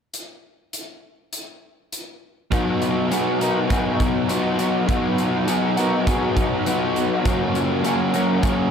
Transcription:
0.14 closed hi-hat soft
0.73 closed hi-hat medium
1.33 closed hi-hat medium
1.93 closed hi-hat soft
2.51 3.68 B2 medium
2.51 3.09 F#3 medium
2.51 2.83 B3 medium
2.51 2.82 D#4 medium
2.51 2.84 F#4 medium
2.51 2.80 F#4 medium
2.51 kick medium
2.51 closed hi-hat medium
2.81 3.11 B3 medium
2.81 3.12 D#4 medium
2.81 3.11 F4 medium
2.81 3.13 F#4 medium
2.81 closed hi-hat medium
3.10 3.69 F#3 medium
3.10 3.42 B3 medium
3.10 3.41 D#4 medium
3.10 3.39 F#4 medium
3.10 3.40 G#4 medium
3.10 closed hi-hat medium
3.40 3.69 B3 soft
3.40 3.70 D#4 medium
3.40 3.71 F#4 medium
3.40 3.70 A#4 medium
3.40 closed hi-hat medium
3.69 4.29 B2 medium
3.69 4.28 F#3 medium
3.69 4.01 B3 medium
3.69 3.99 D#4 medium
3.69 3.98 F#4 medium
3.69 4.00 G#4 medium
3.69 kick medium
3.69 closed hi-hat medium
3.99 4.28 B3 medium
3.99 4.30 D#4 medium
3.99 4.31 F#4 medium
3.99 4.29 F#4 medium
3.99 kick medium
3.99 closed hi-hat medium
4.28 4.88 F#3 medium
4.28 4.59 B3 medium
4.28 4.58 D#4 medium
4.28 4.59 F4 medium
4.28 4.57 F#4 medium
4.28 closed hi-hat medium
4.57 4.88 B3 medium
4.57 4.89 D#4 medium
4.57 4.90 F#4 medium
4.57 4.88 F#4 medium
4.57 closed hi-hat medium
4.87 5.47 B2 medium
4.87 5.46 F#3 medium
4.87 5.19 B3 medium
4.87 5.18 D#4 medium
4.87 5.17 F#4 medium
4.87 kick loud
4.87 closed hi-hat medium
5.17 5.47 B3 medium
5.17 5.48 D#4 medium
5.17 5.48 F4 medium
5.17 5.49 F#4 medium
5.17 closed hi-hat medium
5.47 6.07 F#3 medium
5.47 5.78 B3 medium
5.47 5.77 D#4 medium
5.47 5.76 F#4 medium
5.47 5.77 G#4 medium
5.47 closed hi-hat medium
5.77 6.07 B3 medium
5.77 6.08 D#4 medium
5.77 6.09 F#4 medium
5.77 6.07 A#4 medium
5.77 closed hi-hat medium
6.06 6.66 B2 medium
6.06 6.64 F#3 medium
6.06 6.37 B3 medium
6.06 6.36 D#4 medium
6.06 6.35 F#4 medium
6.06 6.37 G#4 medium
6.06 kick loud
6.06 closed hi-hat medium
6.35 6.65 B3 medium
6.35 6.65 D#4 medium
6.35 6.67 F#4 medium
6.35 kick medium
6.35 closed hi-hat medium
6.64 7.24 F#3 medium
6.64 6.96 B3 medium
6.64 6.95 D#4 medium
6.64 6.96 F4 medium
6.64 6.94 F#4 medium
6.64 closed hi-hat medium
6.94 7.24 B3 soft
6.94 7.23 D#4 medium
6.94 7.26 F#4 medium
6.94 7.25 F#4 medium
6.94 closed hi-hat soft
7.23 8.41 F#2 medium
7.23 7.84 C#3 medium
7.23 7.56 F#3 medium
7.23 7.55 A#3 medium
7.23 7.54 C#4 medium
7.23 7.58 F#4 medium
7.23 7.53 F#4 medium
7.23 kick medium
7.23 closed hi-hat medium
7.54 7.82 F#3 soft
7.54 7.83 A#3 medium
7.54 7.84 C#4 medium
7.54 8.71 F4 medium
7.54 7.85 F#4 medium
7.54 closed hi-hat medium
7.83 8.15 F#3 medium
7.83 8.14 A#3 medium
7.83 8.13 C#4 medium
7.83 8.12 F#4 medium
7.83 8.14 G#4 medium
7.83 closed hi-hat medium
8.12 8.42 F#3 medium
8.12 8.43 A#3 medium
8.12 8.43 C#4 medium
8.12 8.44 F#4 medium
8.12 8.43 A#4 medium
8.12 closed hi-hat medium
8.41 8.71 F#2 medium
8.41 8.71 C#3 medium
8.41 8.71 F#3 medium
8.41 8.71 A#3 medium
8.41 8.71 C#4 medium
8.41 8.71 F#4 medium
8.41 8.71 G#4 medium
8.41 kick loud
8.41 closed hi-hat medium

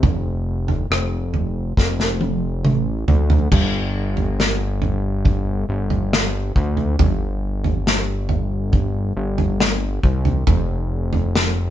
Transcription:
0.03 0.87 F1 loud
0.03 kick loud
0.03 floor tom loud
0.68 floor tom medium
0.91 1.74 F1 medium
0.91 cross-stick loud
1.34 floor tom medium
1.77 2.66 F1 loud
1.77 kick medium
1.77 snare medium
2.00 snare medium
2.21 high tom medium
2.64 3.05 A1 medium
2.64 mid tom medium
3.08 3.48 D2 medium
3.08 floor tom medium
3.30 floor tom medium
3.52 5.65 G1 loud
3.52 kick medium
3.52 floor tom loud
3.52 crash medium
4.17 floor tom medium
4.40 snare loud
4.82 floor tom medium
5.25 kick medium
5.25 floor tom medium
5.69 6.52 G1 medium
5.90 floor tom medium
6.13 snare loud
6.55 6.96 D2 medium
6.55 kick medium
6.77 floor tom medium
6.99 9.13 G1 medium
6.99 kick loud
6.99 floor tom loud
7.64 floor tom medium
7.87 snare loud
8.29 floor tom medium
8.73 kick medium
8.73 floor tom medium
9.16 10.00 G1 loud
9.38 floor tom medium
9.60 snare loud
10.03 10.44 C2 medium
10.03 kick medium
10.25 floor tom medium
10.47 11.70 F1 loud
10.47 kick loud
10.47 floor tom loud
11.13 floor tom medium
11.35 snare loud

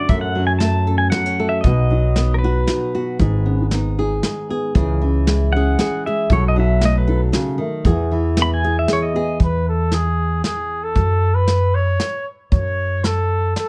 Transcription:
0.00 0.15 D4 medium
0.00 0.15 F#4 medium
0.09 1.09 F#2 loud
0.09 1.62 F#2 medium
0.09 0.61 A3 medium
0.09 0.86 A4 medium
0.09 0.21 E5 medium
0.09 kick loud
0.09 closed hi-hat medium
0.21 0.46 F#5 loud
0.35 1.61 F#3 medium
0.35 0.86 C#4 medium
0.47 0.52 G#5 loud
0.59 1.61 A3 medium
0.59 1.38 A3 medium
0.59 0.98 A5 medium
0.59 snare medium
0.59 closed hi-hat medium
0.87 1.70 C#4 medium
0.87 1.38 A4 medium
0.98 1.10 G#5 medium
1.10 1.26 B3 medium
1.10 1.70 F#4 medium
1.10 1.52 F#5 loud
1.10 snare medium
1.10 closed hi-hat medium
1.26 1.65 C#4 soft
1.40 1.65 A3 medium
1.40 1.62 A4 medium
1.49 1.64 E5 medium
1.61 2.64 B1 loud
1.61 2.16 B3 medium
1.61 2.36 D#5 medium
1.61 kick medium
1.61 closed hi-hat soft
1.66 3.17 B2 medium
1.66 2.43 F#4 medium
1.90 3.17 F#3 medium
1.90 2.41 D#4 medium
2.16 2.93 B3 medium
2.16 3.17 B3 medium
2.16 snare medium
2.16 closed hi-hat soft
2.34 2.38 A#4 medium
2.39 3.66 B4 medium
2.43 3.25 D#4 medium
2.43 2.93 F#4 medium
2.67 3.17 D#4 medium
2.67 3.25 F#4 medium
2.67 snare medium
2.67 closed hi-hat medium
2.95 3.25 B3 medium
2.95 3.17 F#4 medium
3.19 4.19 G#1 loud
3.19 4.72 G#2 medium
3.19 4.76 D#3 medium
3.19 3.98 G#4 medium
3.19 kick medium
3.19 closed hi-hat medium
3.46 4.72 B3 medium
3.46 3.58 C#4 medium
3.60 3.97 D#4 medium
3.71 4.48 B3 medium
3.71 4.73 D#4 medium
3.71 snare medium
3.71 closed hi-hat medium
3.98 4.80 D#4 medium
3.98 4.24 G#4 medium
4.23 4.80 G#4 medium
4.23 4.49 G#4 medium
4.23 snare medium
4.23 closed hi-hat medium
4.49 4.80 B3 medium
4.49 4.72 G#4 medium
4.75 5.74 C#2 loud
4.75 5.01 C#3 medium
4.75 6.30 E3 medium
4.75 5.53 G#4 medium
4.75 kick medium
4.75 closed hi-hat medium
5.01 6.27 E3 medium
5.01 5.53 C#4 medium
5.27 6.04 G#3 medium
5.27 6.28 E4 medium
5.27 snare medium
5.27 closed hi-hat medium
5.53 6.36 C#4 medium
5.53 5.79 G#4 medium
5.53 6.06 F#5 loud
5.79 6.36 G#4 medium
5.79 6.05 G#4 medium
5.79 snare medium
5.79 closed hi-hat soft
6.06 6.36 G#3 medium
6.06 6.28 G#4 medium
6.06 6.32 E5 loud
6.30 7.29 B1 loud
6.30 7.32 B2 medium
6.30 7.86 F#3 medium
6.30 7.06 A4 medium
6.30 6.43 C#5 medium
6.30 kick medium
6.30 closed hi-hat soft
6.48 6.58 D#5 medium
6.56 7.57 F#3 medium
6.56 7.06 D#4 medium
6.56 6.82 E5 medium
6.81 7.82 A3 medium
6.81 7.58 A3 medium
6.81 snare medium
6.81 closed hi-hat medium
6.85 6.97 D#5 medium
6.98 7.20 B4 medium
7.08 7.90 D#4 medium
7.08 7.82 A4 medium
7.32 7.59 C#3 medium
7.32 7.90 F#4 medium
7.32 snare medium
7.32 closed hi-hat medium
7.58 7.84 D#3 medium
7.58 7.91 A3 medium
7.85 10.96 E2 medium
7.85 8.85 E2 loud
7.85 9.41 E3 medium
7.85 8.63 G#4 medium
7.85 kick loud
7.85 closed hi-hat medium
8.11 9.38 E3 medium
8.11 8.61 E4 medium
8.37 9.12 B3 medium
8.37 9.38 B3 medium
8.37 snare medium
8.37 closed hi-hat medium
8.42 8.53 B5 loud
8.54 8.76 G#5 loud
8.63 9.46 E4 medium
8.63 9.15 G#4 medium
8.79 8.90 E5 medium
8.88 9.38 E4 medium
8.88 9.45 G#4 medium
8.88 snare medium
8.88 closed hi-hat medium
8.93 9.04 C#5 loud
9.02 9.38 D#5 medium
9.13 9.45 B3 medium
9.13 9.38 G#4 medium
9.40 10.40 E2 medium
9.40 9.66 B4 medium
9.40 kick medium
9.40 closed hi-hat soft
9.68 9.95 A4 medium
9.92 10.43 G#4 medium
9.92 snare medium
9.92 closed hi-hat soft
10.44 10.84 G#4 medium
10.44 snare medium
10.44 closed hi-hat soft
10.83 11.36 A4 medium
10.95 11.96 F#2 loud
10.95 kick medium
10.95 closed hi-hat soft
11.34 11.76 B4 medium
11.47 snare medium
11.47 closed hi-hat soft
11.74 12.26 C#5 medium
12.00 snare medium
12.00 closed hi-hat soft
12.52 13.52 F#2 medium
12.52 13.06 C#5 medium
12.52 kick medium
12.52 closed hi-hat soft
13.04 13.56 A4 medium
13.04 snare medium
13.04 closed hi-hat medium
13.56 13.69 A4 medium
13.56 snare medium
13.56 closed hi-hat soft

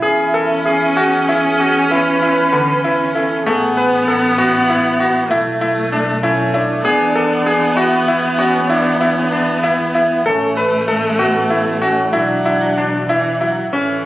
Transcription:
0.00 3.47 E2 medium
0.00 3.41 C#4 loud
0.00 0.99 E4 medium
0.00 0.25 G#4 medium
0.34 0.56 A4 medium
0.66 0.88 G#4 medium
0.97 1.19 F#4 medium
0.97 1.92 G#4 medium
1.29 1.50 E4 medium
1.60 1.82 F#4 medium
1.91 2.13 E4 medium
1.91 2.83 B4 loud
2.22 2.44 E4 medium
2.53 2.74 D3 medium
2.84 3.06 E4 medium
2.84 3.13 B4 medium
3.14 3.37 E4 medium
3.14 3.46 A4 medium
3.44 5.31 A1 medium
3.44 3.68 A3 medium
3.44 5.32 B3 loud
3.44 4.11 G#4 medium
3.77 3.99 B4 medium
4.08 4.30 A4 medium
4.38 5.57 E4 medium
4.38 4.60 F#4 medium
4.70 4.91 E4 medium
5.00 5.22 F#4 medium
5.30 6.85 B1 medium
5.30 6.22 A3 loud
5.30 5.52 E4 medium
5.61 5.83 E4 medium
5.92 6.14 D4 medium
6.22 6.85 A3 medium
6.22 6.56 C#4 medium
6.22 6.45 E4 medium
6.54 7.79 D4 medium
6.54 6.76 E4 medium
6.84 10.27 E2 medium
6.84 10.27 B3 loud
6.84 7.06 G#4 medium
7.15 7.37 A4 medium
7.46 7.68 G#4 medium
7.77 8.40 E4 loud
7.77 7.98 F#4 medium
8.08 8.30 E4 medium
8.38 8.69 C#4 medium
8.38 8.60 F#4 medium
8.70 8.98 D4 loud
8.70 8.91 E4 medium
8.96 9.07 E4 medium
9.01 9.23 E4 medium
9.05 9.15 D4 medium
9.14 9.24 C#4 medium
9.22 9.33 D4 medium
9.31 9.54 D4 medium
9.31 9.62 E4 medium
9.63 10.21 E4 medium
9.63 9.85 E4 medium
9.95 10.16 E4 medium
10.25 12.15 A1 medium
10.25 12.15 A3 loud
10.25 10.59 C#4 medium
10.25 10.48 A4 medium
10.57 10.79 B4 medium
10.88 11.14 A3 medium
10.88 11.10 A4 medium
11.12 11.20 C#4 medium
11.19 11.81 B3 medium
11.19 11.41 F#4 medium
11.50 11.72 E4 medium
11.82 12.07 C#4 medium
11.82 12.04 F#4 medium
12.05 12.14 E4 medium
12.13 13.69 E1 medium
12.13 13.07 F#3 medium
12.13 13.41 D4 medium
12.13 12.35 E4 medium
12.45 12.68 E4 medium
12.78 13.00 D4 medium
13.08 13.42 E3 medium
13.08 13.31 E4 medium
13.40 13.72 F#3 medium
13.40 13.63 E4 medium
13.72 14.05 A1 medium
13.72 14.05 E3 medium
13.72 14.05 A3 medium
13.72 13.95 C#4 medium

